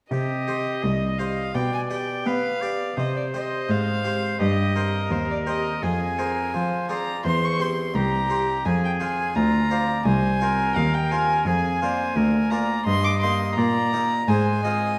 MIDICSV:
0, 0, Header, 1, 5, 480
1, 0, Start_track
1, 0, Key_signature, -3, "minor"
1, 0, Tempo, 714286
1, 75, Time_signature, 4, 2, 24, 8
1, 4394, Tempo, 704225
1, 7751, Key_signature, -3, "major"
1, 10152, End_track
2, 0, Start_track
2, 0, Title_t, "Violin"
2, 0, Program_c, 0, 40
2, 71, Note_on_c, 0, 75, 62
2, 795, Note_on_c, 0, 77, 67
2, 805, Note_off_c, 0, 75, 0
2, 1042, Note_on_c, 0, 79, 74
2, 1052, Note_off_c, 0, 77, 0
2, 1161, Note_off_c, 0, 79, 0
2, 1168, Note_on_c, 0, 80, 67
2, 1215, Note_off_c, 0, 80, 0
2, 1286, Note_on_c, 0, 79, 60
2, 1524, Note_on_c, 0, 77, 72
2, 1534, Note_off_c, 0, 79, 0
2, 2003, Note_off_c, 0, 77, 0
2, 2008, Note_on_c, 0, 75, 57
2, 2122, Note_off_c, 0, 75, 0
2, 2128, Note_on_c, 0, 74, 55
2, 2175, Note_off_c, 0, 74, 0
2, 2248, Note_on_c, 0, 75, 64
2, 2489, Note_on_c, 0, 77, 78
2, 2499, Note_off_c, 0, 75, 0
2, 2960, Note_off_c, 0, 77, 0
2, 2965, Note_on_c, 0, 75, 73
2, 3437, Note_on_c, 0, 72, 66
2, 3447, Note_off_c, 0, 75, 0
2, 3552, Note_off_c, 0, 72, 0
2, 3569, Note_on_c, 0, 74, 55
2, 3613, Note_off_c, 0, 74, 0
2, 3678, Note_on_c, 0, 75, 65
2, 3921, Note_on_c, 0, 80, 74
2, 3931, Note_off_c, 0, 75, 0
2, 4638, Note_off_c, 0, 80, 0
2, 4648, Note_on_c, 0, 82, 73
2, 4876, Note_off_c, 0, 82, 0
2, 4885, Note_on_c, 0, 84, 82
2, 5014, Note_on_c, 0, 85, 78
2, 5024, Note_off_c, 0, 84, 0
2, 5128, Note_on_c, 0, 84, 68
2, 5139, Note_off_c, 0, 85, 0
2, 5357, Note_on_c, 0, 82, 78
2, 5367, Note_off_c, 0, 84, 0
2, 5835, Note_on_c, 0, 80, 66
2, 5845, Note_off_c, 0, 82, 0
2, 5955, Note_off_c, 0, 80, 0
2, 5967, Note_on_c, 0, 79, 71
2, 6013, Note_off_c, 0, 79, 0
2, 6079, Note_on_c, 0, 80, 73
2, 6316, Note_on_c, 0, 82, 83
2, 6327, Note_off_c, 0, 80, 0
2, 6789, Note_off_c, 0, 82, 0
2, 6793, Note_on_c, 0, 80, 90
2, 7271, Note_on_c, 0, 77, 75
2, 7281, Note_off_c, 0, 80, 0
2, 7395, Note_on_c, 0, 79, 69
2, 7405, Note_off_c, 0, 77, 0
2, 7508, Note_on_c, 0, 80, 83
2, 7518, Note_off_c, 0, 79, 0
2, 7741, Note_off_c, 0, 80, 0
2, 7746, Note_on_c, 0, 80, 82
2, 8458, Note_on_c, 0, 82, 82
2, 8468, Note_off_c, 0, 80, 0
2, 8697, Note_off_c, 0, 82, 0
2, 8701, Note_on_c, 0, 84, 102
2, 8827, Note_on_c, 0, 86, 91
2, 8837, Note_off_c, 0, 84, 0
2, 8935, Note_off_c, 0, 86, 0
2, 8939, Note_on_c, 0, 84, 84
2, 9173, Note_off_c, 0, 84, 0
2, 9177, Note_on_c, 0, 82, 87
2, 9667, Note_on_c, 0, 80, 83
2, 9678, Note_off_c, 0, 82, 0
2, 10152, Note_off_c, 0, 80, 0
2, 10152, End_track
3, 0, Start_track
3, 0, Title_t, "Oboe"
3, 0, Program_c, 1, 68
3, 73, Note_on_c, 1, 67, 57
3, 561, Note_on_c, 1, 75, 54
3, 571, Note_off_c, 1, 67, 0
3, 1033, Note_off_c, 1, 75, 0
3, 1037, Note_on_c, 1, 74, 60
3, 1509, Note_off_c, 1, 74, 0
3, 1519, Note_on_c, 1, 71, 57
3, 1756, Note_on_c, 1, 74, 60
3, 1766, Note_off_c, 1, 71, 0
3, 1991, Note_off_c, 1, 74, 0
3, 1995, Note_on_c, 1, 72, 58
3, 2954, Note_on_c, 1, 67, 54
3, 2964, Note_off_c, 1, 72, 0
3, 3190, Note_off_c, 1, 67, 0
3, 3194, Note_on_c, 1, 70, 64
3, 3913, Note_on_c, 1, 68, 50
3, 3923, Note_off_c, 1, 70, 0
3, 4158, Note_on_c, 1, 70, 55
3, 4169, Note_off_c, 1, 68, 0
3, 4394, Note_off_c, 1, 70, 0
3, 4398, Note_on_c, 1, 72, 52
3, 4632, Note_off_c, 1, 72, 0
3, 4636, Note_on_c, 1, 74, 52
3, 4877, Note_on_c, 1, 72, 61
3, 4887, Note_off_c, 1, 74, 0
3, 5185, Note_off_c, 1, 72, 0
3, 5356, Note_on_c, 1, 67, 66
3, 5809, Note_off_c, 1, 67, 0
3, 5837, Note_on_c, 1, 68, 63
3, 6306, Note_off_c, 1, 68, 0
3, 6316, Note_on_c, 1, 65, 56
3, 6550, Note_off_c, 1, 65, 0
3, 6558, Note_on_c, 1, 74, 53
3, 6799, Note_on_c, 1, 72, 53
3, 6809, Note_off_c, 1, 74, 0
3, 7035, Note_off_c, 1, 72, 0
3, 7039, Note_on_c, 1, 70, 69
3, 7756, Note_on_c, 1, 68, 60
3, 7766, Note_off_c, 1, 70, 0
3, 7989, Note_off_c, 1, 68, 0
3, 7994, Note_on_c, 1, 72, 65
3, 8229, Note_on_c, 1, 70, 51
3, 8239, Note_off_c, 1, 72, 0
3, 8471, Note_on_c, 1, 74, 57
3, 8481, Note_off_c, 1, 70, 0
3, 8701, Note_off_c, 1, 74, 0
3, 8705, Note_on_c, 1, 75, 69
3, 9179, Note_off_c, 1, 75, 0
3, 9187, Note_on_c, 1, 74, 74
3, 9557, Note_off_c, 1, 74, 0
3, 9672, Note_on_c, 1, 72, 62
3, 9905, Note_off_c, 1, 72, 0
3, 9909, Note_on_c, 1, 75, 67
3, 10152, Note_off_c, 1, 75, 0
3, 10152, End_track
4, 0, Start_track
4, 0, Title_t, "Harpsichord"
4, 0, Program_c, 2, 6
4, 78, Note_on_c, 2, 48, 44
4, 320, Note_on_c, 2, 67, 39
4, 324, Note_on_c, 2, 72, 40
4, 536, Note_off_c, 2, 48, 0
4, 557, Note_on_c, 2, 36, 41
4, 667, Note_off_c, 2, 67, 0
4, 670, Note_off_c, 2, 72, 0
4, 801, Note_on_c, 2, 67, 31
4, 805, Note_on_c, 2, 72, 35
4, 974, Note_off_c, 2, 67, 0
4, 976, Note_off_c, 2, 72, 0
4, 1012, Note_off_c, 2, 36, 0
4, 1038, Note_on_c, 2, 47, 45
4, 1280, Note_on_c, 2, 67, 33
4, 1282, Note_on_c, 2, 74, 39
4, 1492, Note_off_c, 2, 47, 0
4, 1519, Note_on_c, 2, 59, 47
4, 1626, Note_off_c, 2, 67, 0
4, 1627, Note_off_c, 2, 74, 0
4, 1764, Note_on_c, 2, 67, 36
4, 1766, Note_on_c, 2, 74, 38
4, 1936, Note_off_c, 2, 67, 0
4, 1938, Note_off_c, 2, 74, 0
4, 1974, Note_off_c, 2, 59, 0
4, 1998, Note_on_c, 2, 48, 43
4, 2245, Note_on_c, 2, 60, 39
4, 2246, Note_on_c, 2, 67, 36
4, 2248, Note_on_c, 2, 72, 40
4, 2453, Note_off_c, 2, 48, 0
4, 2478, Note_on_c, 2, 44, 43
4, 2588, Note_off_c, 2, 60, 0
4, 2589, Note_off_c, 2, 67, 0
4, 2590, Note_off_c, 2, 72, 0
4, 2719, Note_on_c, 2, 60, 31
4, 2720, Note_on_c, 2, 67, 31
4, 2725, Note_on_c, 2, 72, 35
4, 2890, Note_off_c, 2, 60, 0
4, 2890, Note_off_c, 2, 67, 0
4, 2893, Note_off_c, 2, 72, 0
4, 2928, Note_off_c, 2, 44, 0
4, 2959, Note_on_c, 2, 43, 47
4, 3196, Note_on_c, 2, 60, 37
4, 3200, Note_on_c, 2, 67, 36
4, 3203, Note_on_c, 2, 72, 38
4, 3403, Note_off_c, 2, 43, 0
4, 3432, Note_on_c, 2, 39, 42
4, 3538, Note_off_c, 2, 60, 0
4, 3541, Note_off_c, 2, 67, 0
4, 3543, Note_off_c, 2, 72, 0
4, 3674, Note_on_c, 2, 60, 39
4, 3675, Note_on_c, 2, 67, 36
4, 3677, Note_on_c, 2, 72, 40
4, 3848, Note_off_c, 2, 60, 0
4, 3849, Note_off_c, 2, 67, 0
4, 3851, Note_off_c, 2, 72, 0
4, 3889, Note_off_c, 2, 39, 0
4, 3919, Note_on_c, 2, 41, 45
4, 4157, Note_on_c, 2, 60, 38
4, 4159, Note_on_c, 2, 68, 39
4, 4162, Note_on_c, 2, 72, 44
4, 4369, Note_off_c, 2, 41, 0
4, 4396, Note_on_c, 2, 53, 45
4, 4500, Note_off_c, 2, 60, 0
4, 4502, Note_off_c, 2, 68, 0
4, 4504, Note_off_c, 2, 72, 0
4, 4634, Note_on_c, 2, 60, 31
4, 4638, Note_on_c, 2, 68, 34
4, 4641, Note_on_c, 2, 72, 33
4, 4807, Note_off_c, 2, 60, 0
4, 4809, Note_off_c, 2, 68, 0
4, 4811, Note_off_c, 2, 72, 0
4, 4848, Note_off_c, 2, 53, 0
4, 4873, Note_on_c, 2, 40, 48
4, 5112, Note_on_c, 2, 60, 37
4, 5116, Note_on_c, 2, 67, 38
4, 5117, Note_on_c, 2, 72, 38
4, 5323, Note_off_c, 2, 40, 0
4, 5349, Note_on_c, 2, 36, 50
4, 5458, Note_off_c, 2, 60, 0
4, 5460, Note_off_c, 2, 67, 0
4, 5461, Note_off_c, 2, 72, 0
4, 5593, Note_on_c, 2, 60, 39
4, 5596, Note_on_c, 2, 67, 38
4, 5598, Note_on_c, 2, 72, 41
4, 5767, Note_off_c, 2, 60, 0
4, 5769, Note_off_c, 2, 67, 0
4, 5770, Note_off_c, 2, 72, 0
4, 5805, Note_off_c, 2, 36, 0
4, 5835, Note_on_c, 2, 41, 50
4, 6073, Note_on_c, 2, 60, 42
4, 6076, Note_on_c, 2, 65, 37
4, 6077, Note_on_c, 2, 72, 41
4, 6246, Note_off_c, 2, 60, 0
4, 6288, Note_off_c, 2, 41, 0
4, 6313, Note_on_c, 2, 38, 47
4, 6421, Note_off_c, 2, 65, 0
4, 6421, Note_off_c, 2, 72, 0
4, 6553, Note_on_c, 2, 60, 35
4, 6555, Note_on_c, 2, 65, 35
4, 6558, Note_on_c, 2, 72, 41
4, 6725, Note_off_c, 2, 60, 0
4, 6727, Note_off_c, 2, 65, 0
4, 6729, Note_off_c, 2, 72, 0
4, 6765, Note_off_c, 2, 38, 0
4, 6792, Note_on_c, 2, 36, 48
4, 7033, Note_on_c, 2, 60, 40
4, 7035, Note_on_c, 2, 65, 37
4, 7039, Note_on_c, 2, 72, 47
4, 7205, Note_off_c, 2, 60, 0
4, 7244, Note_off_c, 2, 36, 0
4, 7272, Note_on_c, 2, 39, 48
4, 7379, Note_off_c, 2, 65, 0
4, 7381, Note_off_c, 2, 72, 0
4, 7513, Note_on_c, 2, 60, 40
4, 7516, Note_on_c, 2, 65, 43
4, 7519, Note_on_c, 2, 72, 41
4, 7685, Note_off_c, 2, 60, 0
4, 7687, Note_off_c, 2, 65, 0
4, 7689, Note_off_c, 2, 72, 0
4, 7724, Note_off_c, 2, 39, 0
4, 7751, Note_on_c, 2, 41, 50
4, 7995, Note_on_c, 2, 58, 41
4, 7996, Note_on_c, 2, 65, 40
4, 8001, Note_on_c, 2, 74, 48
4, 8201, Note_off_c, 2, 41, 0
4, 8225, Note_on_c, 2, 38, 54
4, 8338, Note_off_c, 2, 58, 0
4, 8339, Note_off_c, 2, 65, 0
4, 8342, Note_off_c, 2, 74, 0
4, 8466, Note_on_c, 2, 58, 36
4, 8469, Note_on_c, 2, 65, 40
4, 8473, Note_on_c, 2, 74, 44
4, 8641, Note_off_c, 2, 58, 0
4, 8643, Note_off_c, 2, 65, 0
4, 8645, Note_off_c, 2, 74, 0
4, 8682, Note_off_c, 2, 38, 0
4, 8709, Note_on_c, 2, 43, 55
4, 8957, Note_on_c, 2, 58, 41
4, 8959, Note_on_c, 2, 63, 41
4, 8960, Note_on_c, 2, 75, 48
4, 9163, Note_off_c, 2, 43, 0
4, 9194, Note_on_c, 2, 46, 54
4, 9301, Note_off_c, 2, 58, 0
4, 9303, Note_off_c, 2, 63, 0
4, 9303, Note_off_c, 2, 75, 0
4, 9433, Note_on_c, 2, 58, 38
4, 9437, Note_on_c, 2, 63, 38
4, 9439, Note_on_c, 2, 75, 46
4, 9606, Note_off_c, 2, 58, 0
4, 9609, Note_off_c, 2, 63, 0
4, 9610, Note_off_c, 2, 75, 0
4, 9647, Note_off_c, 2, 46, 0
4, 9677, Note_on_c, 2, 44, 48
4, 9678, Note_on_c, 2, 56, 53
4, 9910, Note_off_c, 2, 56, 0
4, 9920, Note_on_c, 2, 60, 43
4, 9921, Note_on_c, 2, 65, 46
4, 9924, Note_on_c, 2, 75, 47
4, 10130, Note_off_c, 2, 44, 0
4, 10152, Note_off_c, 2, 60, 0
4, 10152, Note_off_c, 2, 65, 0
4, 10152, Note_off_c, 2, 75, 0
4, 10152, End_track
5, 0, Start_track
5, 0, Title_t, "Cello"
5, 0, Program_c, 3, 42
5, 75, Note_on_c, 3, 48, 62
5, 534, Note_off_c, 3, 48, 0
5, 564, Note_on_c, 3, 36, 55
5, 1015, Note_off_c, 3, 36, 0
5, 1038, Note_on_c, 3, 47, 54
5, 1492, Note_off_c, 3, 47, 0
5, 1517, Note_on_c, 3, 59, 62
5, 1973, Note_off_c, 3, 59, 0
5, 1999, Note_on_c, 3, 48, 55
5, 2454, Note_off_c, 3, 48, 0
5, 2481, Note_on_c, 3, 44, 57
5, 2930, Note_off_c, 3, 44, 0
5, 2957, Note_on_c, 3, 43, 63
5, 3402, Note_off_c, 3, 43, 0
5, 3429, Note_on_c, 3, 39, 57
5, 3888, Note_off_c, 3, 39, 0
5, 3915, Note_on_c, 3, 41, 65
5, 4367, Note_off_c, 3, 41, 0
5, 4398, Note_on_c, 3, 53, 53
5, 4849, Note_off_c, 3, 53, 0
5, 4878, Note_on_c, 3, 40, 60
5, 5326, Note_off_c, 3, 40, 0
5, 5355, Note_on_c, 3, 36, 60
5, 5809, Note_off_c, 3, 36, 0
5, 5838, Note_on_c, 3, 41, 70
5, 6289, Note_off_c, 3, 41, 0
5, 6316, Note_on_c, 3, 38, 63
5, 6766, Note_off_c, 3, 38, 0
5, 6791, Note_on_c, 3, 36, 69
5, 7243, Note_off_c, 3, 36, 0
5, 7270, Note_on_c, 3, 39, 58
5, 7723, Note_off_c, 3, 39, 0
5, 7744, Note_on_c, 3, 41, 71
5, 8198, Note_off_c, 3, 41, 0
5, 8222, Note_on_c, 3, 38, 69
5, 8680, Note_off_c, 3, 38, 0
5, 8706, Note_on_c, 3, 43, 74
5, 9162, Note_off_c, 3, 43, 0
5, 9189, Note_on_c, 3, 46, 67
5, 9644, Note_off_c, 3, 46, 0
5, 9669, Note_on_c, 3, 44, 81
5, 10126, Note_off_c, 3, 44, 0
5, 10152, End_track
0, 0, End_of_file